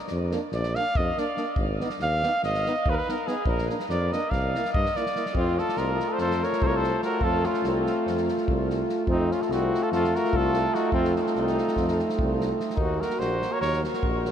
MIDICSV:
0, 0, Header, 1, 7, 480
1, 0, Start_track
1, 0, Tempo, 419287
1, 1787, Time_signature, 9, 3, 24, 8
1, 8016, Tempo, 411241
1, 16552, End_track
2, 0, Start_track
2, 0, Title_t, "Cornet"
2, 0, Program_c, 0, 56
2, 622, Note_on_c, 0, 74, 94
2, 864, Note_on_c, 0, 77, 113
2, 881, Note_off_c, 0, 74, 0
2, 1108, Note_on_c, 0, 75, 95
2, 1125, Note_off_c, 0, 77, 0
2, 1365, Note_on_c, 0, 74, 77
2, 1382, Note_off_c, 0, 75, 0
2, 1796, Note_off_c, 0, 74, 0
2, 2325, Note_on_c, 0, 77, 119
2, 2763, Note_off_c, 0, 77, 0
2, 2800, Note_on_c, 0, 75, 107
2, 3316, Note_on_c, 0, 71, 96
2, 3333, Note_off_c, 0, 75, 0
2, 3335, Note_on_c, 0, 70, 81
2, 3352, Note_off_c, 0, 71, 0
2, 3402, Note_on_c, 0, 71, 93
2, 3419, Note_off_c, 0, 70, 0
2, 3531, Note_on_c, 0, 70, 81
2, 3548, Note_off_c, 0, 71, 0
2, 3749, Note_on_c, 0, 68, 89
2, 3766, Note_off_c, 0, 70, 0
2, 3961, Note_off_c, 0, 68, 0
2, 3976, Note_on_c, 0, 70, 83
2, 4214, Note_off_c, 0, 70, 0
2, 4471, Note_on_c, 0, 74, 86
2, 4721, Note_on_c, 0, 75, 87
2, 4739, Note_off_c, 0, 74, 0
2, 4928, Note_on_c, 0, 77, 86
2, 4945, Note_off_c, 0, 75, 0
2, 5409, Note_off_c, 0, 77, 0
2, 5416, Note_on_c, 0, 75, 98
2, 5682, Note_on_c, 0, 74, 87
2, 5700, Note_off_c, 0, 75, 0
2, 6114, Note_off_c, 0, 74, 0
2, 6143, Note_on_c, 0, 65, 88
2, 6399, Note_on_c, 0, 69, 94
2, 6416, Note_off_c, 0, 65, 0
2, 6614, Note_on_c, 0, 70, 89
2, 6631, Note_off_c, 0, 69, 0
2, 7021, Note_on_c, 0, 72, 87
2, 7038, Note_off_c, 0, 70, 0
2, 7104, Note_off_c, 0, 72, 0
2, 7111, Note_on_c, 0, 72, 90
2, 7375, Note_on_c, 0, 73, 84
2, 7392, Note_off_c, 0, 72, 0
2, 7593, Note_on_c, 0, 72, 98
2, 7611, Note_off_c, 0, 73, 0
2, 7636, Note_on_c, 0, 73, 83
2, 7653, Note_off_c, 0, 72, 0
2, 7752, Note_on_c, 0, 72, 85
2, 7769, Note_off_c, 0, 73, 0
2, 8046, Note_off_c, 0, 72, 0
2, 8067, Note_on_c, 0, 70, 91
2, 8287, Note_on_c, 0, 69, 93
2, 8304, Note_off_c, 0, 70, 0
2, 8547, Note_on_c, 0, 65, 88
2, 8564, Note_off_c, 0, 69, 0
2, 8763, Note_off_c, 0, 65, 0
2, 8797, Note_on_c, 0, 65, 79
2, 9492, Note_off_c, 0, 65, 0
2, 10474, Note_on_c, 0, 63, 90
2, 10726, Note_on_c, 0, 65, 80
2, 10744, Note_off_c, 0, 63, 0
2, 10833, Note_on_c, 0, 69, 67
2, 10851, Note_off_c, 0, 65, 0
2, 10953, Note_on_c, 0, 66, 103
2, 10970, Note_off_c, 0, 69, 0
2, 11320, Note_on_c, 0, 69, 85
2, 11337, Note_off_c, 0, 66, 0
2, 11419, Note_off_c, 0, 69, 0
2, 11426, Note_on_c, 0, 69, 92
2, 11695, Note_on_c, 0, 70, 96
2, 11713, Note_off_c, 0, 69, 0
2, 11941, Note_on_c, 0, 69, 110
2, 11958, Note_off_c, 0, 70, 0
2, 12388, Note_on_c, 0, 66, 94
2, 12406, Note_off_c, 0, 69, 0
2, 12599, Note_off_c, 0, 66, 0
2, 12611, Note_on_c, 0, 65, 83
2, 12871, Note_on_c, 0, 63, 78
2, 12888, Note_off_c, 0, 65, 0
2, 12948, Note_on_c, 0, 61, 60
2, 12966, Note_off_c, 0, 63, 0
2, 13008, Note_on_c, 0, 63, 81
2, 13025, Note_off_c, 0, 61, 0
2, 13077, Note_off_c, 0, 63, 0
2, 13084, Note_on_c, 0, 63, 83
2, 13793, Note_off_c, 0, 63, 0
2, 14768, Note_on_c, 0, 66, 74
2, 15025, Note_on_c, 0, 70, 83
2, 15043, Note_off_c, 0, 66, 0
2, 15241, Note_on_c, 0, 72, 92
2, 15258, Note_off_c, 0, 70, 0
2, 15637, Note_on_c, 0, 73, 91
2, 15655, Note_off_c, 0, 72, 0
2, 15731, Note_off_c, 0, 73, 0
2, 15738, Note_on_c, 0, 73, 107
2, 15979, Note_off_c, 0, 73, 0
2, 16552, End_track
3, 0, Start_track
3, 0, Title_t, "Trumpet"
3, 0, Program_c, 1, 56
3, 6123, Note_on_c, 1, 60, 72
3, 6382, Note_on_c, 1, 65, 61
3, 6399, Note_off_c, 1, 60, 0
3, 6621, Note_off_c, 1, 65, 0
3, 6621, Note_on_c, 1, 65, 75
3, 6969, Note_on_c, 1, 69, 59
3, 6986, Note_off_c, 1, 65, 0
3, 7083, Note_off_c, 1, 69, 0
3, 7092, Note_on_c, 1, 69, 88
3, 7360, Note_on_c, 1, 70, 74
3, 7377, Note_off_c, 1, 69, 0
3, 7579, Note_on_c, 1, 69, 80
3, 7596, Note_off_c, 1, 70, 0
3, 7631, Note_on_c, 1, 70, 74
3, 7648, Note_off_c, 1, 69, 0
3, 7731, Note_on_c, 1, 69, 97
3, 7748, Note_off_c, 1, 70, 0
3, 8035, Note_off_c, 1, 69, 0
3, 8051, Note_on_c, 1, 66, 73
3, 8276, Note_on_c, 1, 65, 84
3, 8294, Note_off_c, 1, 66, 0
3, 8560, Note_on_c, 1, 61, 65
3, 8577, Note_off_c, 1, 65, 0
3, 8770, Note_off_c, 1, 61, 0
3, 8783, Note_on_c, 1, 60, 58
3, 9484, Note_off_c, 1, 60, 0
3, 10460, Note_on_c, 1, 60, 72
3, 10716, Note_on_c, 1, 61, 66
3, 10734, Note_off_c, 1, 60, 0
3, 10852, Note_on_c, 1, 65, 51
3, 10870, Note_off_c, 1, 61, 0
3, 10947, Note_on_c, 1, 60, 80
3, 10965, Note_off_c, 1, 65, 0
3, 11318, Note_on_c, 1, 65, 57
3, 11336, Note_off_c, 1, 60, 0
3, 11423, Note_off_c, 1, 65, 0
3, 11431, Note_on_c, 1, 65, 96
3, 11705, Note_on_c, 1, 66, 77
3, 11722, Note_off_c, 1, 65, 0
3, 11922, Note_on_c, 1, 65, 81
3, 11940, Note_off_c, 1, 66, 0
3, 12382, Note_on_c, 1, 63, 70
3, 12399, Note_off_c, 1, 65, 0
3, 12596, Note_off_c, 1, 63, 0
3, 12601, Note_on_c, 1, 60, 93
3, 12857, Note_off_c, 1, 60, 0
3, 12857, Note_on_c, 1, 60, 57
3, 12925, Note_on_c, 1, 58, 47
3, 12943, Note_off_c, 1, 60, 0
3, 12971, Note_on_c, 1, 60, 73
3, 12989, Note_off_c, 1, 58, 0
3, 13063, Note_off_c, 1, 60, 0
3, 13070, Note_on_c, 1, 60, 63
3, 13786, Note_off_c, 1, 60, 0
3, 14728, Note_on_c, 1, 63, 71
3, 15027, Note_on_c, 1, 66, 60
3, 15044, Note_off_c, 1, 63, 0
3, 15248, Note_off_c, 1, 66, 0
3, 15248, Note_on_c, 1, 66, 68
3, 15623, Note_on_c, 1, 70, 69
3, 15640, Note_off_c, 1, 66, 0
3, 15706, Note_off_c, 1, 70, 0
3, 15713, Note_on_c, 1, 70, 86
3, 15965, Note_off_c, 1, 70, 0
3, 16552, End_track
4, 0, Start_track
4, 0, Title_t, "French horn"
4, 0, Program_c, 2, 60
4, 372, Note_on_c, 2, 62, 66
4, 463, Note_off_c, 2, 62, 0
4, 859, Note_on_c, 2, 62, 67
4, 952, Note_off_c, 2, 62, 0
4, 1337, Note_on_c, 2, 62, 70
4, 1427, Note_off_c, 2, 62, 0
4, 1546, Note_on_c, 2, 62, 66
4, 1638, Note_off_c, 2, 62, 0
4, 2065, Note_on_c, 2, 63, 61
4, 2153, Note_off_c, 2, 63, 0
4, 2557, Note_on_c, 2, 63, 67
4, 2646, Note_off_c, 2, 63, 0
4, 3042, Note_on_c, 2, 63, 74
4, 3132, Note_off_c, 2, 63, 0
4, 3524, Note_on_c, 2, 63, 66
4, 3610, Note_off_c, 2, 63, 0
4, 3743, Note_on_c, 2, 63, 59
4, 3829, Note_off_c, 2, 63, 0
4, 4229, Note_on_c, 2, 62, 58
4, 4317, Note_off_c, 2, 62, 0
4, 4729, Note_on_c, 2, 62, 62
4, 4815, Note_off_c, 2, 62, 0
4, 5206, Note_on_c, 2, 64, 56
4, 5295, Note_off_c, 2, 64, 0
4, 5686, Note_on_c, 2, 64, 60
4, 5771, Note_off_c, 2, 64, 0
4, 5918, Note_on_c, 2, 64, 48
4, 6000, Note_off_c, 2, 64, 0
4, 6125, Note_on_c, 2, 65, 64
4, 10391, Note_off_c, 2, 65, 0
4, 10429, Note_on_c, 2, 65, 83
4, 14524, Note_off_c, 2, 65, 0
4, 14747, Note_on_c, 2, 66, 63
4, 16552, Note_off_c, 2, 66, 0
4, 16552, End_track
5, 0, Start_track
5, 0, Title_t, "Trombone"
5, 0, Program_c, 3, 57
5, 363, Note_on_c, 3, 58, 70
5, 456, Note_off_c, 3, 58, 0
5, 867, Note_on_c, 3, 58, 61
5, 958, Note_off_c, 3, 58, 0
5, 1349, Note_on_c, 3, 58, 67
5, 1436, Note_off_c, 3, 58, 0
5, 1571, Note_on_c, 3, 58, 61
5, 1658, Note_off_c, 3, 58, 0
5, 2068, Note_on_c, 3, 59, 63
5, 2155, Note_off_c, 3, 59, 0
5, 2546, Note_on_c, 3, 59, 63
5, 2637, Note_off_c, 3, 59, 0
5, 3049, Note_on_c, 3, 59, 63
5, 3138, Note_off_c, 3, 59, 0
5, 3531, Note_on_c, 3, 59, 61
5, 3615, Note_off_c, 3, 59, 0
5, 3743, Note_on_c, 3, 59, 68
5, 3829, Note_off_c, 3, 59, 0
5, 4232, Note_on_c, 3, 58, 55
5, 4320, Note_off_c, 3, 58, 0
5, 4719, Note_on_c, 3, 58, 67
5, 4807, Note_off_c, 3, 58, 0
5, 5230, Note_on_c, 3, 58, 59
5, 5314, Note_off_c, 3, 58, 0
5, 5699, Note_on_c, 3, 58, 63
5, 5781, Note_off_c, 3, 58, 0
5, 5914, Note_on_c, 3, 58, 55
5, 5996, Note_off_c, 3, 58, 0
5, 6132, Note_on_c, 3, 57, 54
5, 10395, Note_off_c, 3, 57, 0
5, 10447, Note_on_c, 3, 57, 74
5, 14744, Note_on_c, 3, 58, 54
5, 14761, Note_off_c, 3, 57, 0
5, 16552, Note_off_c, 3, 58, 0
5, 16552, End_track
6, 0, Start_track
6, 0, Title_t, "Tuba"
6, 0, Program_c, 4, 58
6, 125, Note_on_c, 4, 41, 89
6, 392, Note_off_c, 4, 41, 0
6, 597, Note_on_c, 4, 34, 92
6, 870, Note_off_c, 4, 34, 0
6, 1121, Note_on_c, 4, 41, 87
6, 1252, Note_off_c, 4, 41, 0
6, 1794, Note_on_c, 4, 32, 93
6, 2064, Note_off_c, 4, 32, 0
6, 2285, Note_on_c, 4, 39, 81
6, 2555, Note_off_c, 4, 39, 0
6, 2782, Note_on_c, 4, 32, 82
6, 3051, Note_off_c, 4, 32, 0
6, 3274, Note_on_c, 4, 39, 91
6, 3408, Note_off_c, 4, 39, 0
6, 3961, Note_on_c, 4, 34, 111
6, 4229, Note_off_c, 4, 34, 0
6, 4454, Note_on_c, 4, 41, 102
6, 4722, Note_off_c, 4, 41, 0
6, 4938, Note_on_c, 4, 36, 88
6, 5207, Note_off_c, 4, 36, 0
6, 5441, Note_on_c, 4, 43, 82
6, 5573, Note_off_c, 4, 43, 0
6, 6125, Note_on_c, 4, 41, 91
6, 6389, Note_off_c, 4, 41, 0
6, 6602, Note_on_c, 4, 36, 82
6, 6869, Note_off_c, 4, 36, 0
6, 7088, Note_on_c, 4, 41, 88
6, 7356, Note_off_c, 4, 41, 0
6, 7578, Note_on_c, 4, 36, 91
6, 7950, Note_off_c, 4, 36, 0
6, 8265, Note_on_c, 4, 41, 94
6, 8536, Note_off_c, 4, 41, 0
6, 8753, Note_on_c, 4, 36, 91
6, 9025, Note_off_c, 4, 36, 0
6, 9249, Note_on_c, 4, 41, 70
6, 9520, Note_off_c, 4, 41, 0
6, 9753, Note_on_c, 4, 36, 86
6, 10128, Note_off_c, 4, 36, 0
6, 10438, Note_on_c, 4, 41, 97
6, 10707, Note_off_c, 4, 41, 0
6, 10923, Note_on_c, 4, 36, 90
6, 11194, Note_off_c, 4, 36, 0
6, 11412, Note_on_c, 4, 41, 86
6, 11683, Note_off_c, 4, 41, 0
6, 11917, Note_on_c, 4, 36, 94
6, 12291, Note_off_c, 4, 36, 0
6, 12605, Note_on_c, 4, 41, 98
6, 12871, Note_off_c, 4, 41, 0
6, 13103, Note_on_c, 4, 36, 85
6, 13367, Note_off_c, 4, 36, 0
6, 13588, Note_on_c, 4, 41, 88
6, 13853, Note_off_c, 4, 41, 0
6, 14088, Note_on_c, 4, 36, 91
6, 14456, Note_off_c, 4, 36, 0
6, 14757, Note_on_c, 4, 39, 83
6, 15023, Note_off_c, 4, 39, 0
6, 15250, Note_on_c, 4, 34, 85
6, 15515, Note_off_c, 4, 34, 0
6, 15732, Note_on_c, 4, 39, 91
6, 15999, Note_off_c, 4, 39, 0
6, 16217, Note_on_c, 4, 34, 74
6, 16552, Note_off_c, 4, 34, 0
6, 16552, End_track
7, 0, Start_track
7, 0, Title_t, "Drums"
7, 87, Note_on_c, 9, 38, 38
7, 201, Note_off_c, 9, 38, 0
7, 360, Note_on_c, 9, 38, 29
7, 474, Note_off_c, 9, 38, 0
7, 593, Note_on_c, 9, 38, 34
7, 708, Note_off_c, 9, 38, 0
7, 725, Note_on_c, 9, 38, 28
7, 840, Note_off_c, 9, 38, 0
7, 858, Note_on_c, 9, 38, 32
7, 972, Note_off_c, 9, 38, 0
7, 1091, Note_on_c, 9, 36, 106
7, 1206, Note_off_c, 9, 36, 0
7, 1345, Note_on_c, 9, 38, 32
7, 1460, Note_off_c, 9, 38, 0
7, 1568, Note_on_c, 9, 38, 34
7, 1682, Note_off_c, 9, 38, 0
7, 1788, Note_on_c, 9, 36, 96
7, 1903, Note_off_c, 9, 36, 0
7, 2070, Note_on_c, 9, 38, 32
7, 2171, Note_off_c, 9, 38, 0
7, 2171, Note_on_c, 9, 38, 33
7, 2286, Note_off_c, 9, 38, 0
7, 2287, Note_on_c, 9, 38, 34
7, 2401, Note_off_c, 9, 38, 0
7, 2556, Note_on_c, 9, 38, 26
7, 2670, Note_off_c, 9, 38, 0
7, 2782, Note_on_c, 9, 38, 29
7, 2897, Note_off_c, 9, 38, 0
7, 2911, Note_on_c, 9, 38, 30
7, 3025, Note_off_c, 9, 38, 0
7, 3048, Note_on_c, 9, 38, 28
7, 3163, Note_off_c, 9, 38, 0
7, 3270, Note_on_c, 9, 36, 103
7, 3385, Note_off_c, 9, 36, 0
7, 3534, Note_on_c, 9, 38, 29
7, 3649, Note_off_c, 9, 38, 0
7, 3750, Note_on_c, 9, 38, 32
7, 3864, Note_off_c, 9, 38, 0
7, 3956, Note_on_c, 9, 36, 97
7, 4070, Note_off_c, 9, 36, 0
7, 4101, Note_on_c, 9, 38, 27
7, 4216, Note_off_c, 9, 38, 0
7, 4232, Note_on_c, 9, 38, 27
7, 4345, Note_off_c, 9, 38, 0
7, 4345, Note_on_c, 9, 38, 30
7, 4459, Note_off_c, 9, 38, 0
7, 4462, Note_on_c, 9, 38, 32
7, 4576, Note_off_c, 9, 38, 0
7, 4723, Note_on_c, 9, 38, 27
7, 4837, Note_off_c, 9, 38, 0
7, 4939, Note_on_c, 9, 36, 76
7, 4950, Note_on_c, 9, 38, 28
7, 5054, Note_off_c, 9, 36, 0
7, 5064, Note_off_c, 9, 38, 0
7, 5209, Note_on_c, 9, 38, 29
7, 5322, Note_off_c, 9, 38, 0
7, 5322, Note_on_c, 9, 38, 27
7, 5431, Note_on_c, 9, 36, 108
7, 5437, Note_off_c, 9, 38, 0
7, 5546, Note_off_c, 9, 36, 0
7, 5558, Note_on_c, 9, 38, 33
7, 5673, Note_off_c, 9, 38, 0
7, 5675, Note_on_c, 9, 38, 28
7, 5790, Note_off_c, 9, 38, 0
7, 5795, Note_on_c, 9, 38, 28
7, 5904, Note_off_c, 9, 38, 0
7, 5904, Note_on_c, 9, 38, 27
7, 6018, Note_off_c, 9, 38, 0
7, 6020, Note_on_c, 9, 38, 27
7, 6121, Note_on_c, 9, 36, 74
7, 6135, Note_off_c, 9, 38, 0
7, 6236, Note_off_c, 9, 36, 0
7, 6392, Note_on_c, 9, 38, 23
7, 6506, Note_off_c, 9, 38, 0
7, 6510, Note_on_c, 9, 38, 24
7, 6603, Note_off_c, 9, 38, 0
7, 6603, Note_on_c, 9, 38, 28
7, 6717, Note_off_c, 9, 38, 0
7, 6867, Note_on_c, 9, 38, 23
7, 6981, Note_off_c, 9, 38, 0
7, 7080, Note_on_c, 9, 38, 27
7, 7194, Note_off_c, 9, 38, 0
7, 7224, Note_on_c, 9, 38, 28
7, 7338, Note_off_c, 9, 38, 0
7, 7361, Note_on_c, 9, 38, 25
7, 7473, Note_off_c, 9, 38, 0
7, 7473, Note_on_c, 9, 38, 23
7, 7575, Note_on_c, 9, 36, 89
7, 7587, Note_off_c, 9, 38, 0
7, 7690, Note_off_c, 9, 36, 0
7, 7828, Note_on_c, 9, 38, 23
7, 7942, Note_off_c, 9, 38, 0
7, 8040, Note_on_c, 9, 38, 23
7, 8157, Note_off_c, 9, 38, 0
7, 8258, Note_on_c, 9, 36, 81
7, 8374, Note_off_c, 9, 36, 0
7, 8523, Note_on_c, 9, 38, 25
7, 8640, Note_off_c, 9, 38, 0
7, 8644, Note_on_c, 9, 38, 23
7, 8760, Note_off_c, 9, 38, 0
7, 8761, Note_on_c, 9, 38, 28
7, 8877, Note_off_c, 9, 38, 0
7, 9023, Note_on_c, 9, 38, 23
7, 9139, Note_off_c, 9, 38, 0
7, 9263, Note_on_c, 9, 38, 24
7, 9380, Note_off_c, 9, 38, 0
7, 9383, Note_on_c, 9, 38, 23
7, 9500, Note_off_c, 9, 38, 0
7, 9513, Note_on_c, 9, 38, 24
7, 9617, Note_off_c, 9, 38, 0
7, 9617, Note_on_c, 9, 38, 23
7, 9734, Note_off_c, 9, 38, 0
7, 9741, Note_on_c, 9, 36, 80
7, 9858, Note_off_c, 9, 36, 0
7, 10000, Note_on_c, 9, 38, 22
7, 10117, Note_off_c, 9, 38, 0
7, 10223, Note_on_c, 9, 38, 22
7, 10340, Note_off_c, 9, 38, 0
7, 10432, Note_on_c, 9, 36, 73
7, 10549, Note_off_c, 9, 36, 0
7, 10714, Note_on_c, 9, 38, 22
7, 10831, Note_off_c, 9, 38, 0
7, 10839, Note_on_c, 9, 38, 24
7, 10949, Note_off_c, 9, 38, 0
7, 10949, Note_on_c, 9, 38, 28
7, 11066, Note_off_c, 9, 38, 0
7, 11218, Note_on_c, 9, 38, 23
7, 11334, Note_off_c, 9, 38, 0
7, 11425, Note_on_c, 9, 38, 27
7, 11542, Note_off_c, 9, 38, 0
7, 11565, Note_on_c, 9, 38, 26
7, 11682, Note_off_c, 9, 38, 0
7, 11695, Note_on_c, 9, 38, 22
7, 11802, Note_off_c, 9, 38, 0
7, 11802, Note_on_c, 9, 38, 23
7, 11901, Note_on_c, 9, 36, 84
7, 11919, Note_off_c, 9, 38, 0
7, 12018, Note_off_c, 9, 36, 0
7, 12142, Note_on_c, 9, 38, 27
7, 12259, Note_off_c, 9, 38, 0
7, 12385, Note_on_c, 9, 38, 26
7, 12502, Note_off_c, 9, 38, 0
7, 12591, Note_on_c, 9, 36, 75
7, 12707, Note_off_c, 9, 36, 0
7, 12734, Note_on_c, 9, 38, 23
7, 12851, Note_off_c, 9, 38, 0
7, 12871, Note_on_c, 9, 38, 27
7, 12987, Note_off_c, 9, 38, 0
7, 12993, Note_on_c, 9, 38, 27
7, 13093, Note_off_c, 9, 38, 0
7, 13093, Note_on_c, 9, 38, 25
7, 13210, Note_off_c, 9, 38, 0
7, 13233, Note_on_c, 9, 38, 22
7, 13349, Note_off_c, 9, 38, 0
7, 13359, Note_on_c, 9, 38, 25
7, 13474, Note_off_c, 9, 38, 0
7, 13474, Note_on_c, 9, 38, 25
7, 13574, Note_on_c, 9, 36, 59
7, 13578, Note_off_c, 9, 38, 0
7, 13578, Note_on_c, 9, 38, 31
7, 13691, Note_off_c, 9, 36, 0
7, 13695, Note_off_c, 9, 38, 0
7, 13711, Note_on_c, 9, 38, 26
7, 13828, Note_off_c, 9, 38, 0
7, 13840, Note_on_c, 9, 38, 27
7, 13957, Note_off_c, 9, 38, 0
7, 13959, Note_on_c, 9, 38, 26
7, 14068, Note_on_c, 9, 36, 89
7, 14076, Note_off_c, 9, 38, 0
7, 14185, Note_off_c, 9, 36, 0
7, 14325, Note_on_c, 9, 38, 28
7, 14442, Note_off_c, 9, 38, 0
7, 14551, Note_on_c, 9, 38, 27
7, 14667, Note_off_c, 9, 38, 0
7, 14667, Note_on_c, 9, 38, 26
7, 14753, Note_on_c, 9, 36, 89
7, 14784, Note_off_c, 9, 38, 0
7, 14870, Note_off_c, 9, 36, 0
7, 15038, Note_on_c, 9, 38, 26
7, 15134, Note_off_c, 9, 38, 0
7, 15134, Note_on_c, 9, 38, 30
7, 15251, Note_off_c, 9, 38, 0
7, 15257, Note_on_c, 9, 38, 34
7, 15374, Note_off_c, 9, 38, 0
7, 15507, Note_on_c, 9, 38, 26
7, 15624, Note_off_c, 9, 38, 0
7, 15739, Note_on_c, 9, 38, 29
7, 15855, Note_off_c, 9, 38, 0
7, 15868, Note_on_c, 9, 38, 27
7, 15984, Note_off_c, 9, 38, 0
7, 15996, Note_on_c, 9, 38, 28
7, 16110, Note_off_c, 9, 38, 0
7, 16110, Note_on_c, 9, 38, 28
7, 16217, Note_on_c, 9, 36, 84
7, 16226, Note_off_c, 9, 38, 0
7, 16334, Note_off_c, 9, 36, 0
7, 16479, Note_on_c, 9, 38, 27
7, 16552, Note_off_c, 9, 38, 0
7, 16552, End_track
0, 0, End_of_file